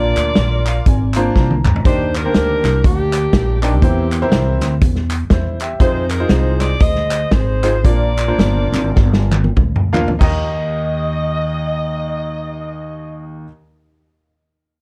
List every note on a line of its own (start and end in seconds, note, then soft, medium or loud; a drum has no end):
0.00 0.11 A#1 loud
0.00 0.62 A#2 medium
0.00 0.38 A#3 medium
0.00 0.38 D4 medium
0.00 0.38 F4 medium
0.00 1.31 F4 medium
0.00 0.38 A#4 medium
0.00 1.31 A#4 loud
0.00 0.38 D5 loud
0.00 1.35 D5 loud
0.16 0.33 D2 medium
0.16 clap loud
0.16 closed hi-hat medium
0.35 0.79 A#1 loud
0.35 snare loud
0.35 closed hi-hat medium
0.66 0.85 F5 medium
0.66 clap loud
0.66 closed hi-hat medium
0.86 1.28 G#1 medium
0.86 1.33 G#5 medium
0.86 kick loud
0.86 closed hi-hat loud
1.14 1.52 A#3 loud
1.14 1.52 D4 medium
1.14 1.52 F4 medium
1.14 1.52 A#4 medium
1.14 1.52 C5 loud
1.14 clap loud
1.14 closed hi-hat loud
1.35 1.60 C2 medium
1.35 1.63 A#5 medium
1.35 kick medium
1.35 snare medium
1.51 high tom medium
1.65 1.82 D2 loud
1.65 1.84 A#5 medium
1.65 clap medium
1.65 mid tom loud
1.76 floor tom medium
1.85 2.27 D#2 medium
1.85 2.60 D#3 medium
1.85 2.08 D4 medium
1.85 2.08 D#4 medium
1.85 2.14 G4 medium
1.85 2.08 G4 medium
1.85 2.08 A#4 medium
1.85 2.12 C5 loud
1.85 2.08 D5 medium
1.85 kick loud
1.85 closed hi-hat loud
2.15 2.82 D4 medium
2.15 2.84 G4 medium
2.15 2.84 A#4 loud
2.15 clap loud
2.15 closed hi-hat medium
2.25 2.75 A#3 medium
2.25 2.75 D4 medium
2.25 2.75 G4 medium
2.25 2.75 A#4 medium
2.25 2.75 C5 medium
2.34 2.59 D2 medium
2.34 snare loud
2.34 closed hi-hat medium
2.64 2.81 C2 medium
2.64 snare soft
2.64 clap medium
2.64 closed hi-hat medium
2.83 3.26 D2 loud
2.83 3.60 A#3 medium
2.83 3.78 D4 medium
2.83 3.59 G4 loud
2.83 kick loud
2.83 closed hi-hat loud
3.13 clap loud
3.13 closed hi-hat loud
3.33 3.82 A#1 loud
3.33 kick medium
3.33 snare loud
3.33 closed hi-hat medium
3.61 4.56 A#3 medium
3.61 4.56 C4 medium
3.61 3.73 D4 medium
3.61 3.73 D#4 medium
3.61 4.57 G4 loud
3.61 3.73 G4 medium
3.61 3.73 A#4 medium
3.61 3.73 D5 medium
3.61 clap medium
3.61 closed hi-hat medium
3.82 4.24 E2 loud
3.82 4.57 E3 medium
3.82 4.05 C4 medium
3.82 4.05 E4 medium
3.82 4.05 G4 medium
3.82 4.05 A#4 medium
3.82 4.05 C5 medium
3.82 kick loud
3.82 closed hi-hat loud
4.12 clap loud
4.12 closed hi-hat medium
4.22 4.72 C4 medium
4.22 4.72 E4 medium
4.22 4.73 G4 medium
4.22 4.72 A#4 medium
4.22 4.72 C5 loud
4.32 4.61 C2 medium
4.32 snare loud
4.32 closed hi-hat medium
4.61 4.78 D2 medium
4.61 snare soft
4.61 clap loud
4.61 closed hi-hat medium
4.81 5.23 E2 loud
4.81 kick loud
4.81 closed hi-hat loud
4.95 snare soft
5.10 clap loud
5.10 closed hi-hat medium
5.30 5.72 E2 medium
5.30 5.59 E4 medium
5.30 5.59 C5 medium
5.30 kick medium
5.30 snare loud
5.30 closed hi-hat medium
5.60 6.08 G4 medium
5.60 6.08 E5 medium
5.60 clap medium
5.60 closed hi-hat medium
5.80 6.22 F2 loud
5.80 6.03 C4 medium
5.80 6.76 D#4 medium
5.80 6.03 D#4 medium
5.80 6.03 F4 medium
5.80 6.03 G#4 medium
5.80 6.76 G#4 medium
5.80 6.07 C5 loud
5.80 6.03 C5 medium
5.80 kick loud
5.80 closed hi-hat loud
6.09 6.29 A#4 loud
6.09 clap loud
6.09 closed hi-hat medium
6.20 6.71 C4 medium
6.20 6.71 D#4 medium
6.20 6.71 F4 medium
6.20 6.71 G#4 medium
6.20 6.71 C5 medium
6.29 6.72 C2 loud
6.29 6.59 C5 medium
6.29 snare loud
6.29 closed hi-hat medium
6.60 6.80 D5 loud
6.60 snare soft
6.60 clap medium
6.60 closed hi-hat medium
6.80 7.24 D2 loud
6.80 7.31 G#4 medium
6.80 7.31 C5 medium
6.80 7.32 D#5 loud
6.80 kick loud
6.80 closed hi-hat loud
6.95 snare soft
7.10 clap loud
7.10 closed hi-hat loud
7.31 7.85 G#1 medium
7.31 7.81 D#4 medium
7.31 7.81 G#4 medium
7.31 7.84 C5 loud
7.31 kick medium
7.31 snare loud
7.31 closed hi-hat medium
7.63 7.74 C4 medium
7.63 7.74 D#4 medium
7.63 7.74 F4 medium
7.63 7.74 G#4 medium
7.63 7.74 C5 loud
7.63 clap medium
7.63 closed hi-hat medium
7.85 8.31 A#1 loud
7.85 8.69 A#2 medium
7.85 8.10 A#3 medium
7.85 8.10 D4 medium
7.85 8.10 F4 medium
7.85 9.53 F4 medium
7.85 8.09 A#4 medium
7.85 9.53 A#4 medium
7.85 9.57 D5 loud
7.85 8.10 D5 loud
7.85 kick loud
7.85 closed hi-hat loud
8.17 clap loud
8.17 closed hi-hat medium
8.28 8.86 A#3 medium
8.28 8.86 D4 medium
8.28 8.86 F4 medium
8.28 8.86 A#4 medium
8.28 8.86 C5 medium
8.38 8.67 G1 medium
8.38 snare loud
8.38 closed hi-hat medium
8.72 8.93 G#1 loud
8.72 snare soft
8.72 clap medium
8.72 closed hi-hat medium
8.96 9.48 G1 medium
8.96 kick loud
8.96 snare medium
9.13 snare medium
9.31 clap loud
9.31 high tom medium
9.44 high tom medium
9.57 10.11 D2 medium
9.57 kick medium
9.57 mid tom medium
9.76 mid tom medium
9.93 10.07 A#3 loud
9.93 10.07 D4 medium
9.93 10.07 F4 medium
9.93 10.07 A#4 medium
9.93 10.07 F5 loud
9.93 clap medium
9.93 floor tom loud
10.08 floor tom loud
10.19 13.44 D#2 medium
10.19 13.43 D#4 medium
10.19 13.44 G4 medium
10.19 13.45 A#4 medium
10.19 13.44 D#5 medium
10.19 kick loud
10.19 clap medium
10.19 crash loud
10.23 13.47 D#5 loud